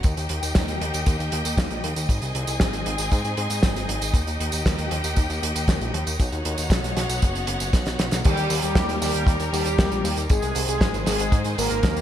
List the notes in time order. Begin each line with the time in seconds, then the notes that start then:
0.03 D#2 A#3 D#4 G4 D#5 G5, kick, closed hi-hat, tambourine
0.17 D#2, closed hi-hat, tambourine
0.29 D#2, closed hi-hat
0.43 D#2, closed hi-hat, tambourine
0.55 D#2, kick, snare, closed hi-hat, tambourine
0.68 D#2, closed hi-hat, tambourine
0.81 D#2, closed hi-hat
0.94 D#2, closed hi-hat, tambourine
1.06 D#2, kick, closed hi-hat, tambourine
1.20 D#2, closed hi-hat, tambourine
1.32 D#2, closed hi-hat
1.45 D#2, closed hi-hat, tambourine
1.57 D#2, kick, snare, closed hi-hat, tambourine
1.70 A#1, closed hi-hat, tambourine
1.84 D#2, closed hi-hat
1.96 D#2, closed hi-hat, tambourine
2.09 G#1 C4 D#4 G#4 G#5, kick, closed hi-hat, tambourine
2.22 C2, closed hi-hat, tambourine
2.35 C2, closed hi-hat
2.47 C2, closed hi-hat, tambourine
2.60 G#1, kick, snare, closed hi-hat, tambourine
2.73 G#1, closed hi-hat, tambourine
2.86 G#1, closed hi-hat
2.98 G#1, closed hi-hat, tambourine
3.12 G#2, kick, closed hi-hat, tambourine
3.25 G#2, closed hi-hat, tambourine
3.37 G#2, closed hi-hat
3.50 G#2, closed hi-hat, tambourine
3.63 G#1, kick, snare, closed hi-hat, tambourine
3.76 G#1, closed hi-hat, tambourine
3.89 G#1, closed hi-hat
4.01 G#1, closed hi-hat, tambourine
4.14 D#2 A#3 G4 G5, kick, closed hi-hat, tambourine
4.27 D#2, closed hi-hat, tambourine
4.40 D#2, closed hi-hat
4.52 D#2, closed hi-hat, tambourine
4.66 D#2, kick, snare, closed hi-hat, tambourine
4.78 D#2, closed hi-hat, tambourine
4.91 D#2, closed hi-hat
5.04 D#2, closed hi-hat, tambourine
5.16 D#2, kick, closed hi-hat, tambourine
5.30 D#2, closed hi-hat, tambourine
5.43 D#2, closed hi-hat
5.55 D#2, closed hi-hat, tambourine
5.68 D#2, kick, snare, closed hi-hat, tambourine
5.81 A#1, closed hi-hat, tambourine
5.94 D#2, closed hi-hat
6.07 D#2, closed hi-hat, tambourine
6.20 B1 B3 F#4 C#5 F#5, kick, closed hi-hat, tambourine
6.32 D#2, closed hi-hat, tambourine
6.45 D#2, closed hi-hat
6.58 D#2, closed hi-hat, tambourine
6.70 B1, kick, snare, closed hi-hat, tambourine
6.84 B1, closed hi-hat, tambourine
6.96 B1, snare, closed hi-hat
7.09 B1, closed hi-hat, tambourine
7.22 F#1, kick, closed hi-hat, tambourine
7.35 F#1, closed hi-hat, tambourine
7.47 F#1, closed hi-hat
7.60 F#1, closed hi-hat, tambourine
7.73 B1, kick, snare, closed hi-hat, tambourine
7.86 B1, snare, closed hi-hat, tambourine
7.99 B1, snare, closed hi-hat
8.11 B1, snare, closed hi-hat, tambourine
8.24 D#2 D#3 G3 A#3 G4 A#4, kick, closed hi-hat, crash, tambourine
8.37 D#2, closed hi-hat, tambourine
8.50 D#2, open hi-hat, tambourine
8.63 D#2 G3 G4, closed hi-hat, tambourine
8.75 D#2, kick, snare, closed hi-hat, tambourine
8.89 D#2, closed hi-hat, tambourine
9.02 D#2 G3 G4, open hi-hat, tambourine
9.14 D#2, closed hi-hat, tambourine
9.27 D#2, kick, closed hi-hat, tambourine
9.40 D#2, closed hi-hat, tambourine
9.53 D#2 G3 G4, open hi-hat, tambourine
9.65 D#2, closed hi-hat, tambourine
9.78 D#2, kick, snare, closed hi-hat, tambourine
9.91 A#1, closed hi-hat, tambourine
10.04 D#2, open hi-hat, tambourine
10.17 D#2, closed hi-hat, tambourine
10.29 G#1 G#3 C4 G#4 C5, kick, closed hi-hat, tambourine
10.42 C2, closed hi-hat, tambourine
10.55 C2, open hi-hat, tambourine
10.68 C2 G#3 G#4, closed hi-hat, tambourine
10.81 G#1, kick, snare, closed hi-hat, tambourine
10.94 G#1, closed hi-hat, tambourine
11.06 G#1 G#3 G#4, snare, open hi-hat, tambourine
11.19 G#1, closed hi-hat, tambourine
11.32 G#2, kick, closed hi-hat, tambourine
11.44 G#2, closed hi-hat, tambourine
11.58 G#1 A#3 A#4, open hi-hat, tambourine
11.70 G#1, closed hi-hat, tambourine
11.83 D#2, kick, snare, closed hi-hat, tambourine
11.96 D#2, closed hi-hat, tambourine